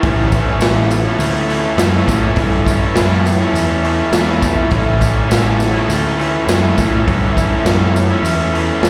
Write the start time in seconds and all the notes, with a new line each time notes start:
0.00 A1 A2 E3 A3 C#4 E4 A4 C#5, kick, open hi-hat, tambourine
0.31 E3 A3 C#4 E4, kick, open hi-hat, tambourine
0.59 A1 A2 E3 A3 C#4, snare, open hi-hat, tambourine
0.64 E4
0.75 A3 C#4 E4
0.90 muted overdriven electric guitar stroke, open hi-hat, tambourine
1.06 A3 C#4 E4
1.18 D2, open hi-hat, tambourine
1.49 E3 A3 C#4 E4, open hi-hat, tambourine
1.76 F#2 A2 E3 A3 C#4 E4, snare, open hi-hat, tambourine
1.93 A3 C#4 E4
2.06 A2 E3 A3 C#4, kick, snare, open hi-hat, tambourine
2.10 E4
2.22 A3 C#4 E4
2.36 G2 A2 E3 A3 C#4 E4, kick, open hi-hat, tambourine
2.65 E3 A3 C#4 E4, kick, open hi-hat, tambourine
2.95 F#2 A2 E3 A3 C#4, snare, open hi-hat, tambourine
2.99 E4
3.10 C#4 E4
3.14 A3
3.25 muted overdriven electric guitar stroke, open hi-hat, tambourine
3.41 A3 C#4 E4
3.53 E2, open hi-hat, tambourine
3.83 E3 A3 C#4 E4, open hi-hat, tambourine
4.12 E2 A2 E3 A3 C#4, snare, open hi-hat, tambourine
4.16 E4
4.26 A3 C#4 E4
4.40 E3 A3 C#4 E4, kick, open hi-hat, tambourine
4.55 A3 C#4 E4
4.70 A1 A2 E3 A3 C#4 E4 A4 C#5, kick, open hi-hat, tambourine
4.97 E3 A3 C#4
5.01 E4, kick, open hi-hat, tambourine
5.26 A2 E3 A3 C#4 E4
5.30 A1, snare, open hi-hat, tambourine
5.42 A3 C#4 E4
5.57 muted overdriven electric guitar stroke, tambourine
5.62 snare, open hi-hat
5.71 A3 C#4 E4
5.89 D2, open hi-hat, tambourine
6.17 E3 A3 C#4, tambourine
6.21 E4, open hi-hat
6.45 F#2 A2 E3 A3 C#4, tambourine
6.49 E4, snare, open hi-hat
6.62 A3 C#4 E4
6.77 A2 E3 A3 C#4 E4, kick, open hi-hat, tambourine
6.91 A3 C#4 E4
7.07 G2 A2 E3 A3 C#4 E4, kick, open hi-hat, tambourine
7.34 E3 A3 C#4 E4, kick, open hi-hat
7.38 tambourine
7.63 F#2 A2 E3 A3 C#4, snare, open hi-hat, tambourine
7.67 E4
7.78 A3 C#4 E4
7.95 muted overdriven electric guitar stroke, open hi-hat, tambourine
8.10 A3 C#4 E4
8.22 E2, open hi-hat, tambourine
8.52 E3 A3 C#4 E4, open hi-hat, tambourine
8.81 E2 A2 E3 A3 C#4 E4, snare, open hi-hat
8.85 tambourine